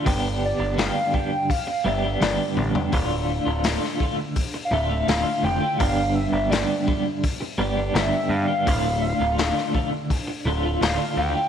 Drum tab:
HH |o---o---o---o---|o---o---o---o---|o---o---o---o---|o---o---o---o---|
SD |----o-------o---|----oo------o---|----o-------o---|----oo------o---|
T1 |--------------o-|----------------|----------------|----------------|
FT |---------------o|----------------|----------------|----------------|
BD |o-----o-o-------|o-----o-o-------|o-----o-o-------|o-----o-o-------|